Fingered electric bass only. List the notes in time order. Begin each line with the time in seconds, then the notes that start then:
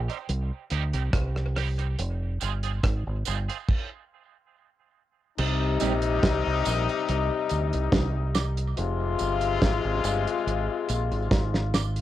0.29 C2
0.72 D2
0.94 C2
1.14 C2
1.99 F1
2.42 G1
2.84 G#1
3.07 G#1
3.27 G1
5.39 C2
5.82 A#1
6.24 C2
6.46 C2
6.67 A#1
7.09 C2
7.51 D2
7.74 C2
7.93 C2
8.79 F1
9.21 G1
9.62 G#1
9.85 G#1
10.04 G1
10.47 G#1
10.89 A#1
11.11 G#1
11.32 G#1